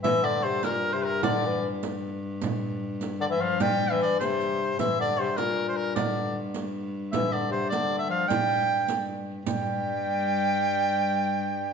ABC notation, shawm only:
X:1
M:6/8
L:1/16
Q:3/8=102
K:Gdor
V:1 name="Shawm"
e2 d2 c2 B3 c B2 | d4 z8 | z8 d e f2 | g3 e d2 c6 |
e2 d2 c2 B3 c B2 | d4 z8 | e2 d2 c2 d3 e f2 | g8 z4 |
g12- | g12 |]